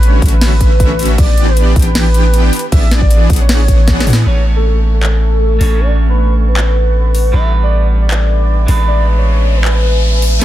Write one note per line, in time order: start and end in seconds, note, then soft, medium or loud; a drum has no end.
0.00 0.20 A1 loud
0.00 0.20 D3 medium
0.00 0.20 A3 medium
0.00 0.20 C#4 medium
0.00 0.20 F#4 medium
0.00 0.19 B4 loud
0.00 0.20 C#5 medium
0.00 closed hi-hat medium
0.22 1.17 A1 loud
0.22 1.16 D3 loud
0.22 1.16 A3 medium
0.22 1.16 C#4 medium
0.22 1.16 F#4 medium
0.22 1.16 E5 loud
0.22 kick loud
0.22 closed hi-hat soft
0.26 closed hi-hat medium
0.28 1.11 B4 loud
0.28 closed hi-hat medium
0.41 snare loud
0.41 closed hi-hat medium
0.41 crash soft
0.61 kick medium
0.61 closed hi-hat medium
0.80 kick loud
0.80 closed hi-hat medium
0.99 closed hi-hat medium
0.99 open hi-hat loud
1.05 closed hi-hat medium
1.18 1.74 A1 loud
1.18 1.74 E3 medium
1.18 1.74 B3 medium
1.18 1.74 D4 medium
1.18 1.74 G4 medium
1.18 1.74 D5 medium
1.18 1.49 D5 loud
1.18 kick loud
1.18 closed hi-hat medium
1.18 crash soft
1.38 closed hi-hat medium
1.48 1.72 B4 loud
1.57 closed hi-hat medium
1.76 2.50 A1 loud
1.76 2.52 E3 loud
1.76 2.52 B3 medium
1.76 2.52 D4 medium
1.76 2.52 G4 medium
1.76 2.52 G5 loud
1.76 kick loud
1.76 closed hi-hat medium
1.79 closed hi-hat medium
1.82 2.65 B4 loud
1.82 closed hi-hat medium
1.95 snare loud
1.95 closed hi-hat medium
1.95 crash soft
2.14 closed hi-hat medium
2.34 closed hi-hat medium
2.53 closed hi-hat medium
2.53 open hi-hat loud
2.59 closed hi-hat medium
2.72 3.28 A1 loud
2.72 3.28 E3 medium
2.72 3.28 B3 medium
2.72 3.28 D4 medium
2.72 3.28 G#4 medium
2.72 3.28 D5 medium
2.72 2.91 E5 loud
2.72 kick loud
2.72 closed hi-hat medium
2.72 crash soft
2.91 snare medium
2.91 closed hi-hat medium
3.02 3.26 D5 loud
3.02 kick medium
3.11 closed hi-hat medium
3.30 4.05 A1 loud
3.30 4.05 E3 loud
3.30 4.05 B3 medium
3.30 4.05 D4 medium
3.30 4.05 G#4 medium
3.30 4.05 F#5 loud
3.30 kick loud
3.30 closed hi-hat medium
3.33 closed hi-hat medium
3.36 4.19 C#5 loud
3.36 closed hi-hat medium
3.49 snare loud
3.49 closed hi-hat medium
3.49 crash soft
3.68 kick medium
3.68 closed hi-hat medium
3.88 kick loud
3.88 snare medium
3.88 closed hi-hat medium
4.00 snare medium
4.07 4.24 A2 loud
4.07 4.24 E3 medium
4.07 4.24 B3 medium
4.07 4.24 D4 medium
4.07 4.24 G#4 medium
4.07 4.24 F#5 medium
4.07 closed hi-hat medium
4.07 open hi-hat medium
4.13 snare loud
4.24 5.59 A1 medium
4.24 5.58 A3 medium
4.24 5.59 A3 medium
4.24 5.58 C#4 medium
4.24 4.28 E4 medium
4.24 5.59 A4 medium
4.24 4.45 C#5 loud
4.24 5.60 C#5 medium
4.24 5.59 E5 medium
4.24 5.59 G#5 medium
4.24 7.30 C#6 medium
4.56 4.80 A4 loud
4.94 5.82 A4 loud
5.03 clap medium
5.59 7.32 A1 medium
5.59 7.31 A3 medium
5.59 7.31 C#4 medium
5.59 7.32 D4 medium
5.59 7.32 F#4 medium
5.59 7.32 A4 medium
5.59 7.33 C#5 medium
5.59 7.32 F#5 medium
5.59 open hi-hat medium
5.80 5.99 D5 loud
6.09 6.34 B4 medium
6.48 7.35 B4 loud
6.57 clap loud
7.15 open hi-hat medium
7.32 8.67 A1 medium
7.32 8.65 G3 medium
7.32 8.66 B3 medium
7.32 8.66 D4 medium
7.32 10.38 B4 medium
7.32 8.67 B4 medium
7.32 10.38 E5 medium
7.32 7.52 E5 loud
7.32 8.67 G5 medium
7.32 8.67 D6 medium
7.32 riser medium
7.63 7.88 D5 loud
8.02 8.80 D5 loud
8.11 clap loud
8.67 10.40 A1 medium
8.67 10.38 G#3 medium
8.67 10.39 B3 medium
8.67 10.39 D4 medium
8.67 10.40 G#5 medium
8.67 open hi-hat medium
8.71 10.40 B4 medium
8.88 9.06 D5 loud
9.17 9.57 C#5 loud
9.56 10.34 B4 loud
9.65 clap medium
10.22 open hi-hat medium
10.39 10.45 E3 medium
10.39 10.45 A3 medium
10.39 10.45 C#4 medium
10.39 10.43 E4 medium
10.39 10.45 G#4 medium
10.39 10.45 C#5 medium
10.39 snare soft
10.39 closed hi-hat medium